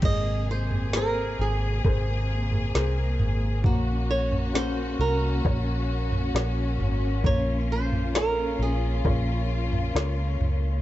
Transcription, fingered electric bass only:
\new Staff \with { instrumentName = "Fingered electric bass" } { \clef bass \time 4/4 \key aes \major \tempo 4 = 66 aes,,4. aes,,8 aes,,4 c,8 aes,,8 | bes,,4. c,8 bes,,4 bes,,8 aes,,8 | bes,,4. bes,,8 bes,,4 des,8 des,8 | }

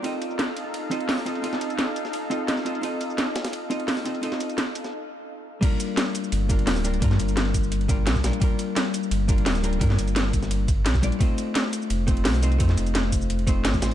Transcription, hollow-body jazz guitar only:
\new Staff \with { instrumentName = "Hollow-body jazz guitar" } { \time 4/4 \key g \minor \tempo 4 = 172 <c' ees' f' a' ees''>2~ <c' ees' f' a' ees''>8 <c' ees' f' a' ees''>4 <c' ees' f' a' ees''>8 | <c' ees' f' a' ees''>2~ <c' ees' f' a' ees''>8 <c' ees' f' a' ees''>4 <c' ees' f' a' ees''>8 | <c' ees' f' a' ees''>2~ <c' ees' f' a' ees''>8 <c' ees' f' a' ees''>4 <c' ees' f' a' ees''>8 | <c' ees' f' a' ees''>2 r2 |
<g bes d' f' bes'>2~ <g bes d' f' bes'>8 <g bes d' f' bes'>4 <g bes d' f' bes'>8 | <g bes d' f' bes'>2~ <g bes d' f' bes'>8 <g bes d' f' bes'>4 <g bes d' f' bes'>8 | <g bes d' f' bes'>2~ <g bes d' f' bes'>8 <g bes d' f' bes'>4 <g bes d' f' bes'>8 | <g bes d' f' bes'>2~ <g bes d' f' bes'>8 r4 <g bes d' f' d''>8 |
<a c' ees' f' c''>2~ <a c' ees' f' c''>8 <a c' ees' f' c''>4 <a c' ees' f' c''>8 | <a c' ees' f' c''>2~ <a c' ees' f' c''>8 <a c' ees' f' c''>4 <a c' ees' f' c''>8 | }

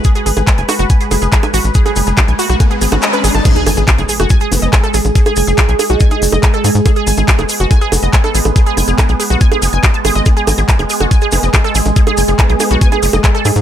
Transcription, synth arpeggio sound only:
\new Staff \with { instrumentName = "Synth arpeggio sound" } { \time 4/4 \key gis \phrygian \tempo 4 = 141 gis'16 gis'16 gis'16 gis'16 r16 gis''16 fis'16 fis'16 gis''16 gis'16 gis'16 gis'16 gis'16 gis''16 fis'16 r16 | gis'16 gis'16 gis'16 gis'16 r16 gis''16 fis'16 fis'16 gis''16 gis'16 gis'16 fis'16 dis''16 b'16 gis'16 a''16 | gis'16 gis'16 gis''16 gis'16 gis''16 gis'16 gis'16 fis'16 gis''16 gis'16 r16 dis''16 gis''16 a'16 gis'16 r16 | gis'16 gis'16 gis''16 gis'16 gis''16 gis'16 gis'16 fis'16 gis''16 gis'16 r16 dis''16 gis''16 a'16 gis'16 r16 |
gis'16 gis'16 gis''16 gis'16 gis''16 gis'16 gis'16 fis'16 gis''16 gis'16 r16 dis''16 gis''16 a'16 gis'16 r16 | gis'16 gis'16 gis''16 gis'16 gis''16 gis'16 gis'16 fis'16 gis''16 gis'16 gis'16 gis''16 dis''16 a''16 gis'16 dis''16 | gis'16 gis'16 gis''16 gis'16 gis''16 gis'16 gis'16 fis'16 gis''16 gis'16 gis'16 dis''16 gis''16 a'16 gis'16 r16 | gis'16 gis'16 gis''16 gis'16 gis''16 gis'16 gis'16 fis'16 gis''16 gis'16 gis'16 dis''16 gis''16 a'16 gis'16 r16 | }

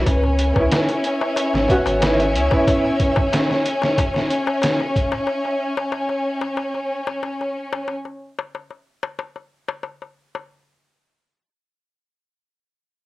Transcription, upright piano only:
\new Staff \with { instrumentName = "Upright piano" } { \time 4/4 \key cis \minor \tempo 4 = 92 r8. <b cis' e'>4.~ <b cis' e'>16 <b cis' fis'>8 <b cis' e'>8. <b cis' e'>16~ | <b cis' e'>8 r2. r8 | r1 | r1 |
r1 | }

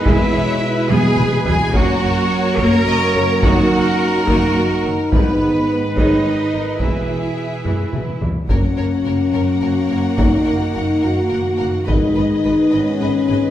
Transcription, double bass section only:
\new Staff \with { instrumentName = "Double bass section" } { \clef bass \time 6/8 \key gis \minor \tempo 4. = 71 e,,8 e,,8 r8 e,,8 e,,8 e,,8 | fis,,8 fis,,8 r8 fis,,8 fis,,8 fis,,8 | fis,,8 fis,,8 r8 fis,,8 fis,,8 fis,,8 | gis,,8 gis,,8 r8 gis,,8 gis,,8 gis,,8 |
e,,8 e,,8 r8 e,,8 e,,8 e,,8 | fis,,8 fis,,8 fis,,8 fis,,8 fis,,8 fis,,8 | fis,,8 fis,,8 fis,,8 fis,,8 fis,,8 fis,,8 | gis,,8 gis,,8 gis,,8 gis,,8 gis,,8 gis,,8 | }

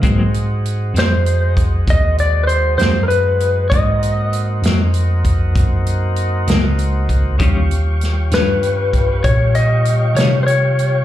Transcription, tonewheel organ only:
\new Staff \with { instrumentName = "Tonewheel organ" } { \time 12/8 \key aes \mixolydian \tempo 4. = 65 <aes c' ees' ges'>1. | <bes c' ees' ges'>1. | <g f' g' des''>1. | }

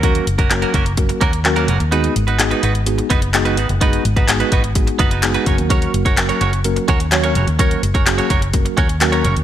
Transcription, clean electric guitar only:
\new Staff \with { instrumentName = "Clean electric guitar" } { \time 4/4 \key fis \mixolydian \tempo 4 = 127 <ais cis' fis' ais'>8 r16 <ais cis' fis' ais'>16 r16 <ais cis' fis' ais'>16 <ais cis' fis' ais'>16 r8. <ais cis' fis' ais'>16 r8 <ais cis' fis' ais'>16 <ais cis' fis' ais'>16 r16 | <b dis' fis' b'>8 r16 <b dis' fis' b'>16 r16 <b dis' fis' b'>16 <b dis' fis' b'>16 r8. <b dis' fis' b'>16 r8 <b dis' fis' b'>16 <b dis' fis' b'>16 r16 | <b dis' fis' b'>8 r16 <b dis' fis' b'>16 r16 <b dis' fis' b'>16 <b dis' fis' b'>16 r8. <b dis' fis' b'>16 <b dis' fis' b'>16 r16 <b dis' fis' b'>16 <cis' fis' ais' cis''>16 r16 | <cis' fis' ais' cis''>8 r16 <cis' fis' ais' cis''>16 r16 <cis' fis' ais' cis''>16 <cis' fis' ais' cis''>16 r8. <cis' fis' ais' cis''>16 r8 <cis' fis' ais' cis''>16 <cis' fis' ais' cis''>16 r16 |
<cis' fis' ais' cis''>8 r16 <cis' fis' ais' cis''>16 r16 <cis' fis' ais' cis''>16 <cis' fis' ais' cis''>16 r8. <cis' fis' ais' cis''>16 r8 <cis' fis' ais' cis''>16 <cis' fis' ais' cis''>16 r16 | }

